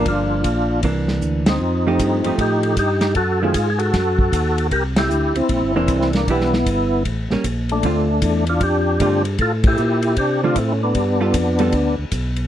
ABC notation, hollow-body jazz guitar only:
X:1
M:4/4
L:1/8
Q:"Swing" 1/4=154
K:Cmix
V:1 name="Hollow-body jazz guitar"
[F,B,D]2 z2 [E,B,D]3 z | z [F,A,_EG]2 [F,A,EG]3 z2 | z [^D,A,C] z6 | z4 z [E,B,D]3 |
[E,=B,DG] z4 [G,_B,^C] z2 | [D,A,CF] z4 z [D,A,CF] z | z4 z [D,A,CF] z2 | z [G,=B,FA] z [G,B,FA] z4 |]